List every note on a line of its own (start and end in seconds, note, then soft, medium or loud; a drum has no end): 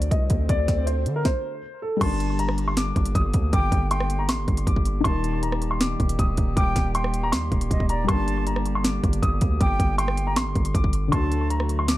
0.00 0.10 D2 loud
0.00 1.57 D3 medium
0.00 1.58 A3 medium
0.00 1.60 F#4 medium
0.00 1.61 A4 medium
0.00 closed hi-hat medium
0.00 swell medium
0.11 0.29 C2 loud
0.11 0.47 D#5 medium
0.11 kick loud
0.11 closed hi-hat medium
0.30 0.48 D2 loud
0.30 kick medium
0.30 closed hi-hat medium
0.49 0.67 D2 loud
0.49 0.85 D5 loud
0.49 kick loud
0.49 closed hi-hat medium
0.68 1.08 D2 loud
0.68 kick medium
0.68 snare medium
0.68 closed hi-hat medium
0.87 1.14 C5 medium
0.87 closed hi-hat medium
1.06 1.24 D3 loud
1.06 closed hi-hat medium
1.16 1.23 A#4 medium
1.25 1.79 C5 medium
1.25 kick loud
1.25 snare medium
1.82 1.96 A4 medium
1.97 4.99 G3 medium
1.97 5.00 G4 medium
2.01 2.92 G1 loud
2.01 5.02 D3 medium
2.01 10.95 G3 medium
2.01 5.02 A#3 medium
2.01 10.95 G4 medium
2.01 5.02 A#4 medium
2.01 2.37 A5 loud
2.01 2.37 C6 loud
2.01 kick loud
2.01 closed hi-hat medium
2.01 crash loud
2.05 5.03 D4 medium
2.20 closed hi-hat medium
2.39 2.66 A#5 medium
2.39 closed hi-hat medium
2.49 cross-stick loud
2.58 closed hi-hat medium
2.68 2.75 C6 medium
2.77 3.13 D6 medium
2.77 snare loud
2.77 closed hi-hat medium
2.96 3.14 G1 loud
2.96 kick medium
2.96 closed hi-hat soft
3.06 closed hi-hat medium
3.15 3.33 G1 loud
3.15 3.51 D#6 medium
3.15 kick loud
3.15 closed hi-hat medium
3.34 3.52 D2 loud
3.34 kick medium
3.34 closed hi-hat medium
3.53 3.71 G1 loud
3.53 3.89 G5 loud
3.53 3.89 D6 loud
3.53 kick loud
3.53 closed hi-hat medium
3.72 4.30 G1 loud
3.72 kick loud
3.72 closed hi-hat medium
3.91 4.27 G5 medium
3.91 4.18 C6 medium
3.91 closed hi-hat medium
4.00 cross-stick loud
4.10 closed hi-hat medium
4.19 4.26 A#5 medium
4.29 4.40 A1 loud
4.29 4.65 C6 medium
4.29 snare loud
4.29 closed hi-hat medium
4.38 4.47 G1 loud
4.48 4.66 G1 loud
4.48 kick loud
4.48 closed hi-hat soft
4.57 closed hi-hat medium
4.67 5.03 G1 loud
4.67 5.03 D6 medium
4.67 kick loud
4.67 closed hi-hat medium
4.76 kick medium
4.85 closed hi-hat medium
5.00 8.02 D#3 medium
5.00 8.04 D#4 medium
5.00 5.40 C6 loud
5.05 5.96 D#1 loud
5.05 8.06 D#3 medium
5.05 10.95 A#3 medium
5.05 8.05 G4 medium
5.05 5.40 A5 loud
5.05 kick loud
5.05 closed hi-hat medium
5.09 8.07 A#4 medium
5.24 closed hi-hat medium
5.43 5.70 A#5 medium
5.43 closed hi-hat medium
5.52 cross-stick loud
5.62 closed hi-hat medium
5.71 5.78 C6 medium
5.81 6.16 D6 medium
5.81 snare loud
5.81 closed hi-hat medium
6.00 6.18 D#1 loud
6.00 kick loud
6.00 closed hi-hat soft
6.09 closed hi-hat medium
6.19 6.37 D1 loud
6.19 6.55 D#6 medium
6.19 kick loud
6.19 closed hi-hat medium
6.37 6.56 D#1 loud
6.37 kick medium
6.37 closed hi-hat medium
6.57 6.75 D#1 loud
6.57 6.93 G5 loud
6.57 6.92 D6 loud
6.57 kick loud
6.57 closed hi-hat medium
6.76 7.34 D#1 loud
6.76 kick medium
6.76 snare medium
6.76 closed hi-hat medium
6.95 7.30 G5 medium
6.95 7.22 C6 medium
6.95 closed hi-hat medium
7.04 cross-stick loud
7.14 closed hi-hat medium
7.23 7.30 A#5 medium
7.32 7.51 D#2 loud
7.32 7.86 C6 medium
7.32 snare loud
7.32 closed hi-hat medium
7.52 7.70 D#1 loud
7.52 kick medium
7.52 closed hi-hat soft
7.61 closed hi-hat medium
7.71 8.07 D#1 loud
7.71 7.89 D#5 medium
7.71 kick loud
7.71 closed hi-hat medium
7.80 kick medium
7.89 8.08 D5 medium
7.89 8.04 A#5 medium
7.89 closed hi-hat medium
8.04 11.06 G3 medium
8.04 11.08 G4 medium
8.08 9.00 G1 loud
8.08 11.97 D3 medium
8.08 11.09 A#4 medium
8.08 8.44 A5 loud
8.08 8.44 C6 loud
8.08 kick loud
8.08 closed hi-hat medium
8.13 11.09 D4 medium
8.28 closed hi-hat medium
8.47 8.73 A#5 medium
8.47 closed hi-hat medium
8.56 cross-stick loud
8.66 closed hi-hat medium
8.75 8.82 C6 medium
8.84 9.20 D6 medium
8.84 snare loud
8.84 closed hi-hat medium
9.04 9.22 G1 loud
9.04 kick loud
9.04 closed hi-hat soft
9.13 closed hi-hat medium
9.22 9.41 G1 loud
9.22 9.58 D#6 medium
9.22 kick loud
9.22 closed hi-hat medium
9.41 9.60 D2 loud
9.41 kick medium
9.41 closed hi-hat medium
9.60 9.79 G1 loud
9.60 9.96 G5 loud
9.60 9.96 D6 loud
9.60 kick loud
9.60 closed hi-hat medium
9.80 10.38 G1 loud
9.80 kick loud
9.80 closed hi-hat medium
9.98 10.34 G5 medium
9.98 10.25 C6 medium
9.98 closed hi-hat medium
10.08 cross-stick loud
10.17 closed hi-hat medium
10.27 10.34 A#5 medium
10.36 10.47 A1 loud
10.36 10.72 C6 loud
10.36 snare loud
10.36 closed hi-hat medium
10.46 10.55 G1 loud
10.55 10.74 G1 loud
10.55 kick loud
10.55 closed hi-hat soft
10.65 closed hi-hat medium
10.75 11.11 G1 loud
10.75 11.10 D6 medium
10.75 kick loud
10.75 closed hi-hat medium
10.84 kick loud
10.93 closed hi-hat medium
11.08 11.97 D3 medium
11.08 11.97 D4 medium
11.08 11.48 C6 loud
11.12 11.97 D2 loud
11.12 11.97 F#3 medium
11.12 11.97 A3 medium
11.12 11.97 F#4 loud
11.12 11.97 F#4 medium
11.12 11.48 A5 loud
11.12 kick loud
11.12 closed hi-hat medium
11.17 11.97 A4 medium
11.32 closed hi-hat medium
11.50 11.77 A#5 medium
11.50 closed hi-hat medium
11.60 cross-stick loud
11.69 closed hi-hat medium
11.79 11.86 C6 medium
11.88 11.97 D6 medium
11.88 snare loud
11.88 closed hi-hat medium